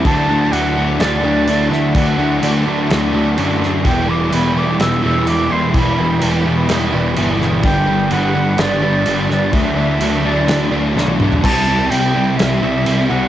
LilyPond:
<<
  \new Staff \with { instrumentName = "Flute" } { \time 4/4 \key d \mixolydian \tempo 4 = 126 a''4 fis''4 d''4. e''8 | fis''4. r2 r8 | g''8 d'''8 b''8 d'''8 e'''8 e'''8 d'''8 c'''8 | b''4. r2 r8 |
g''4 fis''4 d''4. d''8 | e''4. d''4 r4. | a''4 g''4 e''4. fis''8 | }
  \new Staff \with { instrumentName = "Analog synth pad" } { \time 4/4 \key d \mixolydian << { <e' fis'' a''>1~ | <e' fis'' a''>1 | <e' g'' b''>1~ | <e' g'' b''>1 |
<g' b''>1 | <e' a''>1 | r1 | } \\ { d''1~ | d''1 | d''1~ | d''1~ |
d''1~ | d''1 | r1 | } >> }
  \new Staff \with { instrumentName = "Overdriven electric guitar" } { \time 4/4 \key d \mixolydian <d fis a d'>8 <fis a d'>8 <d fis a d'>8 <fis a d'>8 <d fis a d'>8 <d fis a d'>8 <d fis a d'>8 <fis a d'>8 | <d fis a d'>8 <fis a d'>8 <d fis a d'>8 <fis a d'>8 <d fis a d'>8 <d fis a d'>8 <d fis a d'>8 <fis a d'>8 | <e g b e'>8 <g b e'>8 <e g b e'>8 <g b e'>8 <e g b e'>8 <e g b e'>8 <e g b e'>8 <g b e'>8 | <e g b e'>8 <g b e'>8 <e g b e'>8 <g b e'>8 <e g b e'>8 <e g b e'>8 <e g b e'>8 <g b e'>8 |
<g, d g b d'>8 <g b d'>8 <g, d g b d'>8 <g b d'>8 <d g b d'>8 <g, d g b d'>8 <d g b d'>8 <g b d'>8 | <d fis a d'>8 <fis a d'>8 <d fis a d'>8 <fis a d'>8 <d fis a d'>8 <d fis a d'>8 <d fis a d'>8 <fis a d'>8 | <c g c' e'>8 <g c' e'>8 <c g c' e'>8 <g c' e'>8 <c g c' e'>8 <c g c' e'>8 <c g c' e'>8 <g c' e'>8 | }
  \new Staff \with { instrumentName = "Distorted electric guitar" } { \clef bass \time 4/4 \key d \mixolydian <d a d'>8 <a d'>8 <d a d'>8 <d a d'>8 <d a d'>8 <d a d'>8 <d a d'>8 <a d'>8 | <d a d'>8 <a d'>8 <d a d'>8 <d a d'>8 <d a d'>8 <d a d'>8 <d a d'>8 <a d'>8 | <e, b, e>8 <b, e>8 <e, b, e>8 <e, b, e>8 <e, b, e>8 <e, b, e>8 <e, b, e>8 <b, e>8 | <e, b, e>8 <b, e>8 <e, b, e>8 <e, b, e>8 <e, b, e>8 <e, b, e>8 <e, b, e>8 <b, e>8 |
<g, d g>8 <d g>8 <g, d g>8 <g, d g>8 <g, d g>8 <g, d g>8 <g, d g>8 <d g>8 | <d a d'>8 <a d'>8 <d a d'>8 <d a d'>8 <d a d'>8 <d a d'>8 <d a d'>8 <a d'>8 | <c g c'>8 <g c'>8 <c g c'>8 <c g c'>8 <c g c'>8 <c g c'>8 <c g c'>8 <g c'>8 | }
  \new Staff \with { instrumentName = "Picked electric bass" } { \clef bass \time 4/4 \key d \mixolydian d,4 d,4 d,8 d,8 d,8 d,8 | d,8 d,8 d,4 d,8 d,8 fis,4 | e,,4 e,,4 e,,8 e,,8 e,,8 e,,8 | e,,8 e,,8 e,,4 e,,8 e,,8 g,,4 |
g,,4 g,,4 g,,8 g,,8 g,,8 g,,8 | d,8 d,8 d,4 d,8 d,8 b,,4 | c,4 c,4 c,8 c,8 c,8 c,8 | }
  \new DrumStaff \with { instrumentName = "Drums" } \drummode { \time 4/4 <cymc bd>4 cymc4 <cymc sn>4 cymc8 sn8 | <cymc bd>4 cymc4 <cymc sn>4 cymc8 sn8 | <cymc bd>4 cymc4 <cymc sn>4 cymc4 | <cymc bd>4 cymc4 <cymc sn>4 cymc8 sn8 |
<cymc bd>4 cymc4 <cymc sn>4 cymc8 sn8 | <cymc bd>4 cymc4 <cymc sn>4 sn16 tommh16 toml16 tomfh16 | <cymc bd>4 cymc4 <cymc sn>4 cymc4 | }
>>